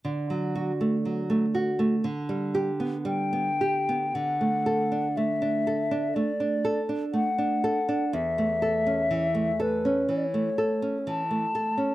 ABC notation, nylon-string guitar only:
X:1
M:4/4
L:1/16
Q:1/4=60
K:D
V:1 name="Nylon-string guitar"
D, F, F A, F, A, F A, D, G, G B, G, B, G B, | D, A, A D A, D A D A, D A D A, D A D | E,, A, A C E, A, A C E, A, A C E, A, A C |]